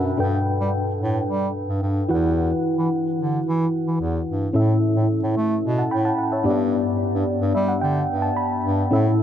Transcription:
Already playing: bass clarinet F#2, fm electric piano B2 D4 F#4 B4 E5 F#5 G5 A5 B5
0.18 fm electric piano G2 D4 A4 B4 G5, bass clarinet G2
0.60 bass clarinet G3
1.01 bass clarinet A2
1.28 bass clarinet G3
1.69 bass clarinet G2
1.82 bass clarinet G2
2.08 bass clarinet E2, fm electric piano E3 E4 F#4 B4 F#5
2.78 bass clarinet E3
3.19 bass clarinet D3
3.46 bass clarinet E3
3.87 bass clarinet E3
4.00 bass clarinet E2
4.28 bass clarinet G2
4.53 fm electric piano A2 C#4 E4 A4 E5, bass clarinet A2
4.96 bass clarinet A2
5.23 bass clarinet A2
5.37 bass clarinet A3
5.64 bass clarinet B2
5.78 fm electric piano F#5 A5
5.91 bass clarinet A2, fm electric piano G5 B5
6.05 fm electric piano F#5 A5
6.18 fm electric piano F#5
6.32 fm electric piano C#5 E5
6.44 fm electric piano G2 B3 D4 G4 D5, bass clarinet G2
7.15 bass clarinet G2
7.42 bass clarinet G2
7.55 bass clarinet G3, fm electric piano E5
7.68 fm electric piano F#5
7.82 bass clarinet D3, fm electric piano G5
8.10 bass clarinet G2
8.22 fm electric piano A5
8.37 fm electric piano B5
8.65 bass clarinet G2
8.91 bass clarinet A2, fm electric piano A2 C#4 E4 A4 E5

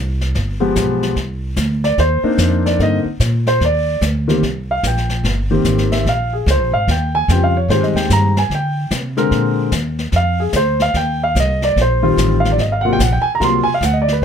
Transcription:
Already playing: upright bass C2
0.21 snare
0.35 upright bass G1, brush sweep, kick, snare
0.60 grand piano F3 G#3 B3 G4
0.76 upright bass B1, kick, snare, hi-hat pedal
1.03 snare
1.16 upright bass C2, brush sweep, kick, snare
1.56 upright bass D2, kick, snare, hi-hat pedal
1.84 grand piano D5, snare
1.98 upright bass D#2, grand piano C5, brush sweep, kick, snare
2.23 grand piano A#3 C4 D4 D#4, muted upright bass stroke
2.38 upright bass F2, kick, snare, hi-hat pedal
2.66 grand piano D5, snare
2.79 upright bass G2, grand piano D3 A#3 C4 D#4 D#5, brush sweep, kick, snare
3.05 muted upright bass stroke
3.20 upright bass A#2, kick, snare, hi-hat pedal
3.47 grand piano C5, snare
3.60 upright bass D#2, brush sweep, kick, snare
3.65 grand piano D5
4.01 upright bass D2, kick, snare, hi-hat pedal
4.28 grand piano D#3 A#3 C4 G4, snare
4.43 upright bass C2, brush sweep, kick, snare
4.71 grand piano F5
4.83 upright bass A#1, grand piano G5, kick, snare, hi-hat pedal
4.97 snare
5.09 snare
5.24 upright bass G1, brush sweep, kick, snare
5.51 grand piano D#3 A#3 C4 G4
5.64 upright bass G#1, kick, snare, hi-hat pedal
5.78 snare
5.92 grand piano E5, snare
6.05 upright bass A#1, grand piano F5, brush sweep, kick, snare
6.33 grand piano G#4
6.46 upright bass C#2, kick, snare, hi-hat pedal
6.50 grand piano C5
6.59 upright bass A#1
6.72 upright bass G#1, grand piano F5
6.88 upright bass D#2, grand piano G5, brush sweep, kick, snare
7.15 grand piano G#5
7.28 upright bass F2, grand piano C#3 G3 C4 F4 G5, kick, snare, hi-hat pedal
7.44 grand piano F5
7.57 grand piano C#5
7.68 upright bass G#2, grand piano D#3 G#3 C4 G4 C5, brush sweep, kick, snare
7.80 upright bass G2, grand piano D#5, snare
7.95 upright bass D#2, grand piano G5, snare
8.10 upright bass G2, grand piano A#5, kick, snare, hi-hat pedal
8.37 grand piano G#5, snare
8.50 upright bass D3, brush sweep, kick, snare
8.55 grand piano G5
8.91 upright bass C3, kick, snare, hi-hat pedal
9.17 grand piano D3 G#3 C4 A#4, snare
9.31 upright bass A#2, brush sweep, kick, snare
9.72 upright bass D#2, kick, snare, hi-hat pedal
9.99 snare
10.12 upright bass F2, brush sweep, kick, snare
10.16 grand piano F5
10.40 grand piano G#4
10.53 upright bass D2, grand piano C5, kick, snare, hi-hat pedal
10.80 grand piano F5, snare
10.94 upright bass D#2, grand piano G5, brush sweep, kick, snare
11.24 grand piano F5
11.35 upright bass C2, kick, snare, hi-hat pedal
11.40 grand piano D#5
11.62 grand piano D5, snare
11.76 upright bass A#1, brush sweep, kick, snare
11.81 grand piano C5
12.02 grand piano D#3 G3 C4 F4
12.17 upright bass A1, kick, snare, hi-hat pedal
12.40 grand piano F5
12.45 snare
12.52 grand piano D5
12.58 upright bass G#1, grand piano D#5, brush sweep, kick, snare
12.72 grand piano F5
12.81 grand piano C3 F#3 A#3 F#5
12.85 grand piano F4
12.93 grand piano G5
12.99 upright bass A#1, grand piano F#5, kick, snare, hi-hat pedal
13.12 grand piano G5
13.22 grand piano G#5, muted upright bass stroke
13.35 grand piano A#5
13.40 upright bass C2, grand piano C3 F#3 A#3 F4, brush sweep, kick, snare
13.44 grand piano C6
13.64 grand piano G#5, muted upright bass stroke
13.74 grand piano F5
13.81 upright bass D2, grand piano F#5, kick, snare, hi-hat pedal
13.93 grand piano D#5
14.02 grand piano D5
14.08 snare
14.13 grand piano B4

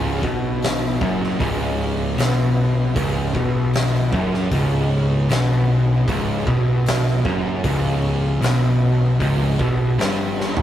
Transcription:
Already playing: picked electric bass C#1, distorted electric guitar C#2
0.23 picked electric bass B1, distorted electric guitar B2, kick
0.62 snare, open hi-hat
1.00 picked electric bass F#1, distorted electric guitar F#2, kick
1.24 snare
1.39 picked electric bass C#1, distorted electric guitar C#2, kick, open hi-hat
2.16 picked electric bass B1, distorted electric guitar B2, open hi-hat
2.21 snare
2.95 picked electric bass C#1, distorted electric guitar C#2, kick, open hi-hat
3.33 picked electric bass B1, distorted electric guitar B2, kick
3.73 snare, open hi-hat
3.95 snare
4.12 picked electric bass F#1, distorted electric guitar F#2, kick
4.34 snare
4.50 picked electric bass C#1, distorted electric guitar C#2, kick, open hi-hat
5.28 picked electric bass B1, distorted electric guitar B2, snare, open hi-hat
6.06 picked electric bass C#1, distorted electric guitar C#2, kick, open hi-hat
6.45 picked electric bass B1, distorted electric guitar B2, kick
6.86 snare, open hi-hat
7.08 snare
7.24 picked electric bass F#1, distorted electric guitar F#2, kick
7.63 picked electric bass C#1, distorted electric guitar C#2, kick, open hi-hat
8.41 picked electric bass B1, distorted electric guitar B2, snare, open hi-hat
9.20 picked electric bass C#1, distorted electric guitar C#2, kick, open hi-hat
9.59 picked electric bass B1, distorted electric guitar B2, kick
9.98 picked electric bass G1, distorted electric guitar G2, snare, open hi-hat
10.40 snare
10.57 floor tom

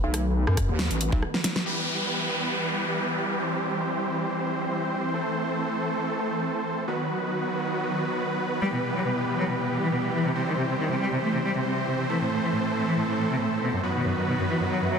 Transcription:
Already playing: supersaw synth D#3 A3 B3 F#4 B4
0.04 wobble bass B1
0.14 cross-stick, closed hi-hat
0.47 wobble bass F#2, cross-stick
0.57 kick, cross-stick, closed hi-hat
0.69 wobble bass D#2
0.79 snare
0.91 wobble bass A1, closed hi-hat
1.01 closed hi-hat
1.12 wobble bass B1, kick
1.22 cross-stick
1.34 snare
1.44 snare, closed hi-hat
1.56 snare
1.66 supersaw synth E3 G3 B3 G4 B4, crash, downlifter
3.40 supersaw synth C4 C5
5.14 supersaw synth A3 A4
6.88 supersaw synth D#3 F#3 B3 F#4 B4
8.62 supersaw synth E3 G3 G4, cello G3
8.73 cello B2
8.83 cello B2
8.95 cello F#3
9.05 cello B2
9.17 cello B2
9.27 cello B2
9.38 cello F#3
9.49 cello B2
9.60 cello B2
9.70 cello B2
9.82 cello E3
9.92 cello B2
10.04 cello B2
10.14 cello E3
10.26 cello C3
10.36 cello C3, supersaw synth C4 C5
10.47 cello D#3
10.57 cello C3
10.69 cello C3
10.79 cello D#3
10.91 cello C3
11.01 cello G3
11.12 cello C3
11.23 cello A3
11.34 cello C3
11.44 cello G3
11.56 cello C3
11.66 cello C3
11.88 cello C3
11.99 cello C3
12.09 cello E3, supersaw synth E3 A3 A4
12.21 cello A2
12.31 cello A2
12.43 cello E3
12.53 cello A2
12.65 cello A2
12.75 cello A2
12.86 cello E3
12.97 cello A2
13.08 cello A2
13.18 cello A2
13.30 cello C3
13.40 cello A2
13.52 cello A2
13.62 cello B2
13.73 cello F#2
13.83 cello F#2, supersaw synth D#3 F#3 B3 F#4 B4
13.95 cello B2
14.05 cello F#2
14.17 cello F#2
14.27 cello B2
14.39 cello F#2
14.49 cello E3
14.60 cello F#2
14.70 cello F#3, swell
14.82 cello F#2
14.92 cello F#3

